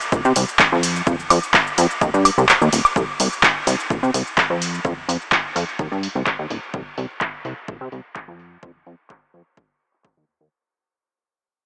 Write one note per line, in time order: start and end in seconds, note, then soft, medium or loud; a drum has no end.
0.01 cabasa soft
0.12 0.21 A#1 medium
0.12 kick loud
0.12 cabasa soft
0.25 0.33 C3 loud
0.25 cabasa soft
0.36 0.45 C2 loud
0.36 open hi-hat loud
0.36 cabasa medium
0.48 cabasa soft
0.59 kick loud
0.59 clap loud
0.59 cabasa soft
0.72 1.02 F2 medium
0.83 open hi-hat loud
0.83 cabasa medium
0.96 cabasa soft
1.07 1.16 F2 loud
1.07 kick loud
1.07 cabasa medium
1.19 1.28 F2 soft
1.19 cabasa soft
1.30 1.39 F2 medium
1.30 open hi-hat loud
1.30 cabasa medium
1.30 high woodblock medium
1.43 cabasa soft
1.54 kick loud
1.54 clap loud
1.54 cabasa medium
1.67 cabasa soft
1.78 1.87 F2 loud
1.78 open hi-hat loud
1.78 cabasa medium
1.91 cabasa soft
2.01 2.10 D#2 loud
2.01 kick loud
2.01 cabasa medium
2.14 2.30 G2 loud
2.14 cabasa soft
2.25 open hi-hat loud
2.25 cabasa medium
2.25 high woodblock medium
2.38 2.45 C2 medium
2.38 cabasa soft
2.49 2.59 D#2 soft
2.49 clap loud
2.49 cabasa soft
2.62 2.69 D#2 medium
2.62 cabasa soft
2.73 2.81 D#1 medium
2.73 open hi-hat loud
2.73 cabasa medium
2.85 cabasa soft
2.85 high woodblock medium
2.96 3.05 C2 loud
2.96 kick loud
2.96 cabasa soft
3.20 3.28 C2 medium
3.20 open hi-hat loud
3.20 cabasa medium
3.33 cabasa soft
3.43 kick loud
3.43 clap loud
3.43 cabasa soft
3.67 3.76 C2 loud
3.67 open hi-hat loud
3.67 cabasa medium
3.80 cabasa soft
3.90 3.99 A#1 medium
3.90 kick loud
3.90 cabasa soft
4.03 4.11 C3 loud
4.03 cabasa soft
4.14 4.23 C2 medium
4.14 open hi-hat loud
4.14 cabasa medium
4.27 cabasa soft
4.38 kick loud
4.38 clap loud
4.38 cabasa soft
4.50 4.80 F2 medium
4.62 open hi-hat loud
4.62 cabasa medium
4.74 cabasa soft
4.85 4.94 F2 loud
4.85 kick loud
4.85 cabasa soft
4.97 5.06 F2 soft
5.08 5.17 F2 medium
5.08 open hi-hat loud
5.08 cabasa medium
5.22 cabasa soft
5.32 kick loud
5.32 clap loud
5.32 cabasa soft
5.56 5.64 F2 medium
5.56 open hi-hat loud
5.56 cabasa medium
5.69 cabasa soft
5.79 5.88 D#2 medium
5.79 kick loud
5.79 cabasa soft
5.92 6.08 G2 loud
5.92 cabasa soft
6.03 open hi-hat loud
6.03 cabasa medium
6.15 6.23 C2 medium
6.15 cabasa soft
6.27 6.36 D#2 soft
6.27 kick loud
6.27 clap loud
6.27 cabasa soft
6.39 6.47 D#2 medium
6.50 6.59 D#1 medium
6.50 open hi-hat loud
6.50 cabasa medium
6.63 cabasa soft
6.74 6.83 C2 loud
6.74 kick loud
6.74 cabasa soft
6.98 7.06 C2 medium
6.98 open hi-hat loud
6.98 cabasa medium
7.10 cabasa soft
7.21 kick loud
7.21 clap loud
7.21 cabasa soft
7.45 7.54 C2 medium
7.45 open hi-hat loud
7.45 cabasa medium
7.58 cabasa soft
7.68 7.77 A#1 medium
7.68 kick loud
7.81 7.89 C3 loud
7.81 cabasa soft
7.92 8.01 C2 medium
7.92 open hi-hat loud
7.92 cabasa medium
8.05 cabasa soft
8.16 kick loud
8.16 clap loud
8.28 8.58 F2 medium
8.39 open hi-hat loud
8.39 cabasa medium
8.52 cabasa soft
8.63 8.72 F2 loud
8.63 kick loud
8.75 8.84 F2 soft
8.86 8.95 F2 medium
8.86 open hi-hat loud
8.86 cabasa medium
9.10 kick loud
9.10 clap loud
9.34 9.43 F2 medium
9.34 open hi-hat loud
9.57 kick loud
9.81 open hi-hat loud
9.93 clap soft
10.04 kick loud
10.04 clap loud
10.17 10.25 D#2 medium
10.41 10.49 D#2 medium